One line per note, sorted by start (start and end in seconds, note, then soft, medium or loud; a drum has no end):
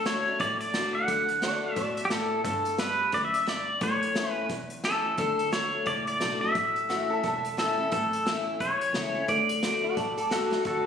0.00 0.23 D2 medium
0.05 0.25 D3 medium
0.05 0.26 A3 medium
0.05 0.26 D4 medium
0.05 0.25 F#4 medium
0.05 0.41 C#5 medium
0.05 snare loud
0.05 closed hi-hat medium
0.26 0.40 D4 soft
0.26 0.39 F#4 medium
0.40 0.91 A1 medium
0.40 1.05 A2 medium
0.40 0.59 D5 medium
0.40 kick loud
0.40 closed hi-hat medium
0.61 0.92 D5 medium
0.61 closed hi-hat medium
0.74 1.07 D3 soft
0.74 1.07 A3 medium
0.74 1.07 D4 medium
0.74 1.07 F#4 medium
0.74 snare loud
0.74 closed hi-hat medium
0.95 1.73 F#5 medium
1.08 1.59 D2 medium
1.08 1.40 D3 medium
1.08 kick loud
1.08 closed hi-hat medium
1.29 closed hi-hat medium
1.42 1.75 D3 soft
1.42 1.75 A3 medium
1.42 1.76 D4 medium
1.42 1.76 F#4 medium
1.42 1.76 D5 medium
1.42 snare loud
1.42 closed hi-hat medium
1.73 2.28 A1 medium
1.73 2.09 B2 medium
1.73 2.09 E5 medium
1.73 kick loud
1.73 closed hi-hat medium
1.77 1.97 D5 medium
1.97 closed hi-hat medium
2.05 2.11 G4 medium
2.10 2.44 A2 medium
2.10 2.43 A4 medium
2.10 snare medium
2.10 closed hi-hat soft
2.44 2.96 G1 medium
2.44 3.11 G2 medium
2.44 2.80 A4 medium
2.44 kick loud
2.44 closed hi-hat medium
2.65 closed hi-hat medium
2.78 3.12 G3 medium
2.78 3.12 B3 medium
2.78 3.12 D4 medium
2.78 3.12 G4 medium
2.78 3.11 B4 medium
2.78 snare loud
2.78 closed hi-hat medium
3.12 3.64 D2 medium
3.12 3.46 F#2 medium
3.12 3.24 D5 medium
3.12 kick loud
3.12 closed hi-hat medium
3.25 3.49 E5 medium
3.34 closed hi-hat medium
3.47 3.80 G2 medium
3.47 3.80 D5 medium
3.47 snare loud
3.47 closed hi-hat medium
3.81 4.33 A1 medium
3.81 4.47 A2 medium
3.81 4.31 C#5 medium
3.81 kick loud
3.81 closed hi-hat medium
4.03 closed hi-hat medium
4.15 4.48 E3 soft
4.15 4.49 A3 medium
4.15 4.49 C#4 medium
4.15 4.49 E4 medium
4.15 snare loud
4.15 closed hi-hat medium
4.31 4.47 B4 medium
4.49 5.01 E1 medium
4.49 5.15 E2 medium
4.49 kick loud
4.49 closed hi-hat medium
4.70 closed hi-hat medium
4.84 5.17 E3 soft
4.84 5.17 A3 soft
4.84 5.17 C#4 soft
4.84 5.18 E4 medium
4.84 5.18 A4 medium
4.84 snare loud
4.84 closed hi-hat medium
5.18 5.69 D2 medium
5.18 5.51 D3 medium
5.18 5.50 A4 medium
5.18 kick loud
5.18 closed hi-hat medium
5.39 closed hi-hat medium
5.52 5.85 D3 medium
5.52 5.85 A3 soft
5.52 5.86 D4 medium
5.52 5.86 F#4 medium
5.52 5.88 C#5 medium
5.52 snare loud
5.52 closed hi-hat medium
5.86 6.15 C#2 medium
5.86 6.52 A2 medium
5.86 6.06 D5 medium
5.86 kick loud
5.86 closed hi-hat medium
6.07 6.39 D5 medium
6.07 closed hi-hat medium
6.20 6.50 B1 medium
6.20 6.40 D3 soft
6.20 6.41 A3 medium
6.20 6.41 D4 medium
6.20 6.40 F#4 medium
6.20 snare medium
6.20 closed hi-hat medium
6.41 6.55 D4 soft
6.41 6.54 F#4 soft
6.41 7.61 E5 medium
6.55 7.06 A1 medium
6.55 7.21 A2 medium
6.55 kick loud
6.55 closed hi-hat medium
6.76 closed hi-hat medium
6.89 7.22 E3 medium
6.89 7.22 A3 soft
6.89 7.23 C#4 medium
6.89 7.23 E4 medium
6.89 7.09 F#4 medium
6.89 snare loud
6.89 closed hi-hat medium
7.10 7.23 A4 medium
7.23 7.75 E1 medium
7.23 7.89 E2 medium
7.23 7.50 A4 medium
7.23 kick loud
7.23 closed hi-hat medium
7.45 closed hi-hat medium
7.57 7.77 E3 medium
7.57 7.77 A3 medium
7.57 7.78 C#4 medium
7.57 7.76 E4 medium
7.57 7.92 A4 medium
7.57 snare medium
7.57 closed hi-hat medium
7.77 7.92 C#4 soft
7.77 7.91 E4 medium
7.92 8.43 A1 medium
7.92 8.57 A2 medium
7.92 8.43 A4 medium
7.92 kick loud
7.92 closed hi-hat medium
8.13 closed hi-hat medium
8.26 8.59 E3 medium
8.26 8.59 A3 medium
8.26 8.59 C#4 medium
8.26 8.59 E4 medium
8.26 snare loud
8.26 closed hi-hat medium
8.60 8.89 B1 medium
8.60 9.26 E2 medium
8.60 9.29 C#5 medium
8.60 kick loud
8.60 closed hi-hat medium
8.81 closed hi-hat medium
8.93 9.23 C#2 medium
8.93 9.14 E3 soft
8.93 9.14 A3 soft
8.93 9.15 C#4 soft
8.93 9.14 E4 medium
8.93 snare medium
8.93 closed hi-hat medium
9.15 9.29 C#4 soft
9.15 9.28 E4 medium
9.28 9.80 D2 medium
9.28 9.61 D3 medium
9.28 10.48 D5 medium
9.28 kick loud
9.28 closed hi-hat medium
9.49 closed hi-hat medium
9.63 9.95 D3 soft
9.63 9.96 A3 medium
9.63 9.96 D4 medium
9.63 9.96 F#4 medium
9.63 snare loud
9.63 closed hi-hat medium
9.84 9.97 F#4 medium
9.97 10.48 A1 medium
9.97 10.62 A2 medium
9.97 10.16 A4 medium
9.97 kick loud
9.97 closed hi-hat medium
10.17 10.50 A4 medium
10.17 closed hi-hat medium
10.30 10.50 D3 medium
10.30 10.51 A3 soft
10.30 10.51 D4 soft
10.30 10.50 F#4 medium
10.30 10.63 F#4 medium
10.30 10.66 A4 medium
10.30 snare medium
10.30 closed hi-hat medium
10.51 10.65 D4 soft
10.51 10.64 F#4 medium
10.51 snare medium
10.65 10.86 D2 medium
10.65 10.86 D3 medium
10.65 10.86 F#4 medium
10.65 10.86 A4 medium
10.65 kick loud
10.65 closed hi-hat medium